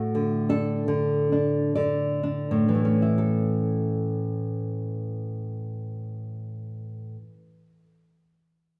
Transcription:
Already playing: A2 A3 F#4
0.15 D3
0.49 D4 A4
0.88 D3
1.32 D4
1.75 D3 D5
2.23 D4
2.51 A2
2.68 E3
2.75 A3
2.85 C#4
3.02 E4
3.18 A4

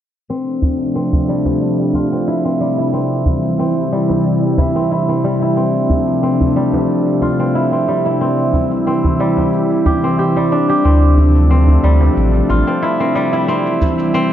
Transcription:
0.30 C3 F3 A3 C4 D4, cabasa
0.48 cabasa
0.62 djembe tone, djembe bass, cabasa
0.81 cabasa
0.95 C4, cabasa
1.13 djembe tone, djembe bass
1.29 G3, cabasa
1.45 djembe slap, djembe tone, cabasa
1.62 cabasa
1.80 cabasa
1.93 F4, djembe tone, cabasa
2.12 C4, cabasa
2.27 E4, cabasa
2.45 C4
2.60 G3, cabasa
2.78 E4, cabasa
2.93 E3 G3 C4 E4, cabasa
3.11 cabasa
3.26 djembe bass, cabasa
3.44 cabasa
3.59 C4, cabasa
3.77 cabasa
3.92 G3, cabasa
4.09 djembe slap, djembe tone, cabasa
4.26 cabasa
4.43 cabasa
4.58 E4, djembe slap, djembe bass, cabasa
4.76 C4, cabasa
4.91 E4, cabasa
5.09 C4, cabasa
5.24 G3, cabasa
5.42 E4, cabasa
5.57 F3 A3 C4 D4, cabasa
5.75 cabasa
5.90 djembe tone, djembe bass, cabasa
6.08 cabasa
6.23 C4, cabasa
6.40 djembe tone, djembe bass, cabasa
6.56 G3, cabasa
6.73 djembe slap, djembe tone, cabasa
6.89 cabasa
7.07 cabasa
7.21 F4, djembe tone, cabasa
7.40 C4, cabasa
7.55 E4, cabasa
7.73 C4, cabasa
7.88 G3, cabasa
8.05 E4, cabasa
8.21 E3 G3 C4 E4, cabasa
8.38 cabasa
8.53 djembe tone, djembe bass, cabasa
8.71 cabasa
8.87 C4, cabasa
9.04 djembe bass, cabasa
9.20 G3, cabasa
9.37 djembe slap, djembe tone, cabasa
9.53 cabasa
9.71 cabasa
9.86 G4, djembe slap, djembe bass, cabasa
10.03 C4, cabasa
10.19 G4, cabasa
10.36 G3, djembe slap, cabasa
10.52 D4, cabasa
10.69 G4, cabasa
10.84 D2 F3 A3 C4 D4, cabasa
11.03 cabasa
11.17 djembe tone, djembe bass, cabasa
11.36 cabasa
11.50 C4, cabasa
11.68 djembe tone, djembe bass, cabasa
11.83 D2 G3, cabasa
12.01 djembe slap, djembe tone, cabasa
12.17 A1, cabasa
12.34 cabasa
12.49 A1 F4, djembe tone, cabasa
12.67 C4, cabasa
12.82 E4, cabasa
13.00 C4, cabasa
13.15 G3, cabasa
13.33 E4, cabasa
13.48 E3 G3 C4 E4, cabasa
13.66 cabasa
13.81 djembe bass, cabasa
13.99 cabasa
14.14 C4, cabasa

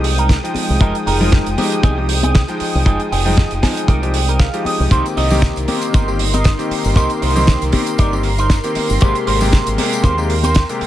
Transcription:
Already playing: C2 G#3 G5 D#6
0.04 muted clean electric guitar stroke, open hi-hat
0.18 D#4 G4 A#4, closed hi-hat
0.29 kick, snare, closed hi-hat
0.43 F3 G#3 D#4 G5, closed hi-hat
0.55 muted clean electric guitar stroke, muted fingered electric bass stroke, open hi-hat, high conga
0.70 C2
0.80 F1 F3 G#3 D#4 G4 A#4 G5, kick, closed hi-hat
0.95 closed hi-hat
1.06 F1 D#4 G4 A#4, open hi-hat
1.20 F3 G#3 D#4 G5, low conga
1.32 kick, snare, closed hi-hat
1.46 F1, closed hi-hat
1.57 F3 G#3 D#4 G4, open hi-hat, high conga
1.72 closed hi-hat
1.83 C2 D#4 G4 G#4, kick, closed hi-hat, high conga
1.97 F3 G#3 D#4 G4
2.09 muted clean electric guitar stroke, open hi-hat
2.23 D#4 G4 G#4, closed hi-hat, high conga
2.35 kick, snare, closed hi-hat
2.48 F3 G#3 D#4 G5, closed hi-hat
2.60 muted clean electric guitar stroke, muted fingered electric bass stroke, open hi-hat
2.75 C2
2.85 F1 F3 G#3 D#4 G4 G#4 G5, kick, closed hi-hat
3.00 closed hi-hat
3.11 F1 D#4 G4 G#4, open hi-hat
3.25 F3 G#3 D#4 G5, low conga
3.37 kick, snare, closed hi-hat
3.51 F1, closed hi-hat
3.62 F3 G#3 D#4 G#5, kick, snare, open hi-hat, high conga
3.77 closed hi-hat
3.88 C2 D#4 G4 A#4 G5, kick, closed hi-hat
4.02 F3 G#3 D#4 G4, closed hi-hat
4.14 muted clean electric guitar stroke, open hi-hat
4.28 D#4 G4 A#4, closed hi-hat
4.40 F5, kick, snare, closed hi-hat
4.53 F3 G#3 D#4 G4, closed hi-hat
4.65 D#5, muted clean electric guitar stroke, muted fingered electric bass stroke, open hi-hat, high conga
4.80 C2
4.91 C2 D#3 A#3 C4 D#4 G4 A#4 C5 C6, kick, closed hi-hat, tambourine
5.06 closed hi-hat, tambourine
5.17 C2 D#4 A#4 D#5, open hi-hat
5.30 D#3 A#3 C4 G4, tambourine, low conga
5.42 kick, snare, closed hi-hat, tambourine
5.56 C2, closed hi-hat, tambourine
5.68 D#3 A#3 C4 G4, open hi-hat, high conga
5.82 closed hi-hat, tambourine
5.93 G1 D#4 A#4 C5, kick, closed hi-hat, tambourine, high conga
6.07 D#3 A#3 C4 G4, tambourine
6.19 muted clean electric guitar stroke, open hi-hat
6.33 D#4 A#4 D#5, closed hi-hat, tambourine, high conga
6.44 kick, snare, closed hi-hat, tambourine
6.58 D#3 A#3 C4 G4, closed hi-hat, tambourine
6.70 muted clean electric guitar stroke, muted fingered electric bass stroke, open hi-hat
6.85 G1, tambourine
6.95 C2 D#3 A#3 C4 D#4 G4 A#4 C5, kick, closed hi-hat, tambourine
7.10 closed hi-hat, tambourine
7.22 C2 D#4 A#4 C5, open hi-hat
7.35 D#3 A#3 C4 G4, tambourine, low conga
7.47 kick, snare, closed hi-hat, tambourine
7.61 C2, closed hi-hat, tambourine
7.72 D#3 A#3 C4 G4, kick, open hi-hat, high conga
7.87 closed hi-hat, tambourine
7.98 G1 D#4 A#4 D5, kick, closed hi-hat, tambourine
8.12 D#3 A#3 C4 G4, tambourine
8.23 muted clean electric guitar stroke, open hi-hat
8.38 D#4 A#4 C5, closed hi-hat, tambourine
8.50 kick, snare, closed hi-hat, tambourine
8.64 D#3 A#3 C4 G4, closed hi-hat, tambourine
8.75 muted clean electric guitar stroke, muted fingered electric bass stroke, open hi-hat, high conga
8.90 G1, tambourine
9.00 G#1 C3 G#3 A#3 G4 A#4 C5 G5, kick, closed hi-hat, tambourine
9.15 closed hi-hat, tambourine
9.27 G#1 G4 A#4 C5, open hi-hat
9.41 C3 G#3 A#3 G4, tambourine, low conga
9.52 kick, snare, closed hi-hat, tambourine
9.67 G#1, closed hi-hat, tambourine
9.78 C3 G#3 A#3 G4, open hi-hat, high conga
9.93 closed hi-hat, tambourine
10.03 D#2 G4 A#4 C5, kick, closed hi-hat, tambourine, high conga
10.17 C3 G#3 A#3 G4, tambourine
10.29 muted clean electric guitar stroke, open hi-hat
10.43 G4 A#4 C5, closed hi-hat, tambourine, high conga
10.55 kick, snare, closed hi-hat, tambourine
10.69 C3 G#3 A#3 G4, closed hi-hat, tambourine
10.81 muted clean electric guitar stroke, muted fingered electric bass stroke, open hi-hat

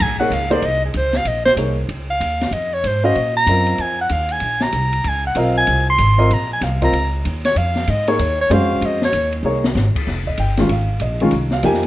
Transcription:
0.00 A#1 G#5, kick, crash
0.19 A#3 D#4 G#4 C#5 F#5
0.30 C#2 F5, hi-hat pedal, ride
0.50 A#3 D#4 G#4 C5 D5, ride
0.62 C2 D#5, ride
0.86 G#4
0.94 C#2 C5, hi-hat pedal, ride
1.13 snare, ride
1.17 F5
1.25 A#1 D#5, ride
1.45 C5, snare
1.56 C2 A#3 D#4 G#4 C#5, hi-hat pedal, ride
1.89 C#2, ride
2.10 F5
2.20 D#2, hi-hat pedal, ride
2.41 snare, ride
2.51 F2 D#5, ride
2.74 C#5
2.84 G#2 C5, hi-hat pedal, ride
3.04 C#4 F#4 C5 D#5 F5
3.15 A#2, ride
3.37 A#5
3.46 F#2 C4 F4 A#4 D#5, hi-hat pedal, ride
3.66 ride
3.78 F2 G#5, ride
4.01 F#5
4.09 D#2 F5, hi-hat pedal, ride
4.29 G#5, ride
4.40 A#1, ride
4.61 A#5, snare
4.72 C2, hi-hat pedal, ride
4.93 ride
5.04 C#2, ride
5.08 G#5
5.27 F#5
5.35 B1 C4 F4 A#4 D#5, hi-hat pedal, ride
5.39 F5
5.57 G#5
5.67 C2, ride
5.90 C6
5.98 G#1, hi-hat pedal, ride
6.18 C4 F4 A#4 D#5
6.31 A#1 A#5, ride
6.53 G#5
6.61 C2 F5, snare, hi-hat pedal, ride
6.82 C4 F4 A#4 D#5 A#5, kick, ride
6.93 C#2, ride
7.25 D#2, hi-hat pedal, ride
7.45 C#5, snare, ride
7.56 F2 F5, ride
7.76 snare
7.87 G#2 D#5, hi-hat pedal, ride
8.07 A#3 D#4 G#4 C#5, ride
8.19 D#2, ride
8.41 C#5
8.50 F#2 G#3 C#4 F#4 C5 F5, hi-hat pedal, ride
8.61 F2
8.72 C#2
8.81 F2, ride
8.86 D#5
9.02 C#5, snare
9.13 D#2, hi-hat pedal, ride
9.32 ride
9.43 C2 A#3 D#4 G#4 C#5
9.64 snare
9.75 G#1, snare, hi-hat pedal
9.95 muted upright bass stroke, kick, crash
10.07 F1, snare
10.27 D#5, kick
10.37 G1 G5, hi-hat pedal, ride
10.57 D#3 G#3 C#4 F4, snare, ride
10.69 G#1 F5, ride
11.00 A#1 D#5, hi-hat pedal, ride
11.20 D#3 G#3 C#4 F4, ride
11.31 C2, ride
11.51 F5, snare
11.63 F2 F3 A#3 D#4 G4 G#5, hi-hat pedal, ride
11.74 snare
11.83 ride

